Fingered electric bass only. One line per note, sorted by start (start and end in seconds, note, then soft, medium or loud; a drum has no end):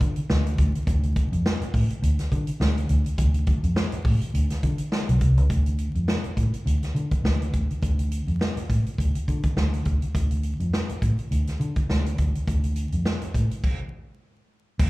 0.01 0.14 D3 medium
0.30 0.53 D2 loud
0.59 0.72 D2 medium
0.87 1.24 D2 loud
1.32 1.43 F2 medium
1.61 muted fingered electric bass stroke soft
1.74 1.87 A2 medium
2.02 2.16 D2 loud
2.32 2.45 D3 loud
2.60 2.84 D2 loud
2.90 3.03 D2 medium
3.18 3.55 D2 loud
3.64 3.74 F2 medium
3.93 muted fingered electric bass stroke soft
4.05 4.18 A2 medium
4.34 4.47 D2 medium
4.63 4.76 D3 medium
5.09 5.19 B1 medium
5.21 5.37 C2 medium
5.37 5.48 C#2 medium
5.50 5.87 D2 loud
5.95 6.06 F2 medium
6.24 muted fingered electric bass stroke soft
6.37 6.50 A2 medium
6.66 6.79 D2 medium
6.95 7.08 D3 medium
7.24 7.48 D2 medium
7.54 7.67 D2 medium
7.83 8.20 D2 loud
8.27 8.38 F2 medium
8.57 muted fingered electric bass stroke soft
8.70 8.83 A2 medium
8.98 9.12 D2 medium
9.28 9.41 D3 medium
9.56 9.80 D2 medium
9.86 9.99 D2 medium
10.15 10.52 D2 loud
10.60 10.71 F2 medium
10.89 muted fingered electric bass stroke soft
11.02 11.15 A2 medium
11.31 11.44 D2 medium
11.60 11.73 D3 loud
11.89 12.13 D2 medium
12.19 12.32 D2 medium
12.47 12.84 D2 loud
12.93 13.03 F2 medium
13.22 muted fingered electric bass stroke soft
13.34 13.48 A2 medium
14.79 14.90 D2 loud